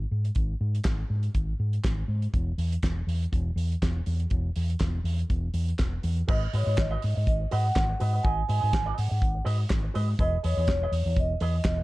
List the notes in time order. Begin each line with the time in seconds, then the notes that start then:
0.11 G#2
0.25 closed hi-hat
0.35 G#1, kick, closed hi-hat
0.61 G#2
0.75 closed hi-hat
0.84 G#1, kick, snare, clap, closed hi-hat
1.10 G#2
1.23 closed hi-hat
1.35 G#1, kick, closed hi-hat
1.60 G#2
1.73 closed hi-hat
1.84 G#1, kick, snare, clap, closed hi-hat
2.08 G#2
2.22 closed hi-hat
2.34 E1, kick, closed hi-hat
2.58 E2, open hi-hat
2.72 closed hi-hat
2.83 E1, kick, snare, clap, closed hi-hat
3.07 E2, open hi-hat
3.23 closed hi-hat
3.32 E1, kick, closed hi-hat
3.56 E2, open hi-hat
3.72 closed hi-hat
3.82 E1, kick, snare, clap, closed hi-hat
4.06 E2, open hi-hat
4.20 closed hi-hat
4.30 E1, kick, closed hi-hat
4.56 E2, open hi-hat
4.70 closed hi-hat
4.79 E1, kick, snare, clap, closed hi-hat
5.04 E2, open hi-hat
5.19 closed hi-hat
5.30 E1, kick, closed hi-hat
5.54 E2, open hi-hat
5.68 closed hi-hat
5.79 E1, kick, snare, clap, closed hi-hat
6.03 E2, open hi-hat
6.17 closed hi-hat
6.28 G#1 F#4 B4 D#5, kick, crash
6.32 D#5
6.53 G#2 F#4 B4 C#5 D#5, open hi-hat
6.66 G#2 F#4 B4 D#5
6.77 G#1 D#5, muted clean electric guitar stroke, kick, snare, clap, closed hi-hat
6.91 F#4 B4 D#5
7.02 G#2, muted clean electric guitar stroke, open hi-hat
7.15 G#2, muted clean electric guitar stroke
7.27 G#1 D#5, kick, closed hi-hat
7.40 muted clean electric guitar stroke
7.51 G#2 F#4 B4 D#5 F#5, open hi-hat
7.65 muted clean electric guitar stroke
7.76 G#1, muted clean electric guitar stroke, kick, snare, clap, closed hi-hat
7.90 muted clean electric guitar stroke
8.00 G#2 F#4 B4 D#5, open hi-hat
8.13 F#4 B4 D#5
8.23 G#1 F#4 B4 D#5 G#5, kick, closed hi-hat
8.48 G#2 F#4 B4 D#5 G#5, open hi-hat
8.61 G#2 F#4 B4 D#5
8.72 G#1, muted clean electric guitar stroke, kick, snare, clap
8.86 F#4 B4 D#5
8.96 G#2 F#5, muted clean electric guitar stroke, open hi-hat
9.09 G#2, muted clean electric guitar stroke
9.22 G#1, kick, closed hi-hat
9.34 muted clean electric guitar stroke
9.45 G#2 F#4 B4 D#5, open hi-hat
9.58 muted clean electric guitar stroke
9.69 G#1, muted clean electric guitar stroke, kick, snare, clap, closed hi-hat
9.83 muted clean electric guitar stroke
9.94 G#2 F#4 B4 D#5, open hi-hat
10.09 muted clean electric guitar stroke
10.19 E1 G#4 B4 D#5, kick, closed hi-hat
10.43 E2 G#4 B4 C#5 D#5, open hi-hat
10.57 E2 G#4 B4 D#5
10.67 E1, muted clean electric guitar stroke, kick, snare, clap, closed hi-hat
10.83 G#4 B4 D#5
10.92 E2, muted clean electric guitar stroke, open hi-hat
11.06 E2, muted clean electric guitar stroke
11.16 E1 D#5, kick, closed hi-hat
11.31 muted clean electric guitar stroke
11.40 E2 G#4 B4 D#5, open hi-hat
11.55 muted clean electric guitar stroke
11.64 E1 D#5, muted clean electric guitar stroke, kick, snare, clap, closed hi-hat
11.78 muted clean electric guitar stroke